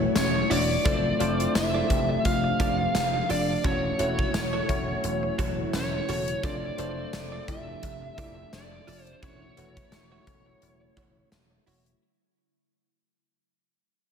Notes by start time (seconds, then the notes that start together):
Already playing: E3 F#3 A3 C#4 E4 F#4 B4 C#5
0.00 muted clean electric guitar stroke
0.15 E1 C#4 C#5, muted clean electric guitar stroke, snare, closed hi-hat, tambourine
0.34 muted clean electric guitar stroke
0.50 E1 D4 E4 F#4 C#5 D5, open hi-hat
0.69 muted clean electric guitar stroke
0.85 F1 C3 F3 A3 C4 D4 F4 A4 C5 D5, kick, closed hi-hat
1.04 muted clean electric guitar stroke
1.19 F1 A3 C4 D4 F4 A4 C5 D5, closed hi-hat
1.39 F4 A4 D5, closed hi-hat
1.55 F1 E4 E5, snare, closed hi-hat, tambourine
1.74 F4 A4 D5
1.90 F1 F3 A3 C4 D4 G4, kick, closed hi-hat
2.09 muted clean electric guitar stroke
2.25 F1 F4 F5, muted clean electric guitar stroke, kick, closed hi-hat
2.44 muted clean electric guitar stroke
2.60 F1 F4 A4 D5, kick, closed hi-hat
2.79 muted clean electric guitar stroke
2.94 F1, muted clean electric guitar stroke, snare, closed hi-hat, tambourine
3.14 muted clean electric guitar stroke
3.29 F1 D4 F4 A4 D5, open hi-hat
3.49 muted clean electric guitar stroke
3.64 E1 C#3 E3 F#3 A3 C#4 E4 F#4 A4 C#5, kick, closed hi-hat
3.84 muted clean electric guitar stroke
3.98 E1 A3 C#4 E4 F#4 A4 C#5, closed hi-hat
4.18 F#4 A4 C#5, kick
4.34 E1, muted clean electric guitar stroke, snare, closed hi-hat, tambourine
4.53 F#4 A4 C#5
4.68 E1 A3 C#4 E4 F#4 C#5, muted clean electric guitar stroke, kick, closed hi-hat
4.88 muted clean electric guitar stroke
5.04 E1, muted clean electric guitar stroke, closed hi-hat
5.23 muted clean electric guitar stroke
5.38 E1 F#4 A4 C#5, kick, closed hi-hat
5.58 muted clean electric guitar stroke
5.73 E1 C#4 C#5, muted clean electric guitar stroke, snare, closed hi-hat, tambourine
5.93 muted clean electric guitar stroke
6.09 E1 F#4 A4 C#5, open hi-hat
6.28 muted clean electric guitar stroke, closed hi-hat
6.43 F1 C3 F3 A3 C4 D4 F4 A4 C5 D5, kick, closed hi-hat
6.63 muted clean electric guitar stroke
6.78 F1 A3 C4 D4 F4 A4 C5 D5, closed hi-hat
6.97 F4 A4 D5
7.13 F1, muted clean electric guitar stroke, snare, closed hi-hat, tambourine
7.32 F4 A4 D5
7.47 F1 F3 A3 C4 D4 E4 G4 E5, muted clean electric guitar stroke, kick, closed hi-hat
7.67 muted clean electric guitar stroke
7.83 F1, muted clean electric guitar stroke, kick, closed hi-hat
8.02 muted clean electric guitar stroke
8.18 F1 E4 F4 A4 D5 E5, kick, closed hi-hat
8.37 muted clean electric guitar stroke
8.53 F1 D4 D5, muted clean electric guitar stroke, snare, closed hi-hat, tambourine
8.72 muted clean electric guitar stroke
8.87 F1 F4 A4 D5, open hi-hat
9.03 C5, closed hi-hat
9.07 muted clean electric guitar stroke
9.22 E1 C#3 E3 F#3 A3 C#4 E4 F#4 C#5, kick, closed hi-hat
9.42 muted clean electric guitar stroke
9.57 E1 A3 C#4 E4 F#4 B4 C#5, closed hi-hat
9.77 E4 F#4 C#5, kick, closed hi-hat
9.92 E1, muted clean electric guitar stroke, snare, closed hi-hat, tambourine
10.12 E4 F#4 C#5
10.26 E1 A3 C#4 E4 F#4 C#5, kick, closed hi-hat
10.46 muted clean electric guitar stroke
10.62 E1, muted clean electric guitar stroke, closed hi-hat
10.81 muted clean electric guitar stroke
10.97 E1 E4 F#4 C#5, kick, closed hi-hat
11.16 muted clean electric guitar stroke
11.32 E1, muted clean electric guitar stroke, snare, closed hi-hat, tambourine
11.51 muted clean electric guitar stroke
11.66 E1 E4 F#4 C#5, open hi-hat
11.86 muted clean electric guitar stroke, closed hi-hat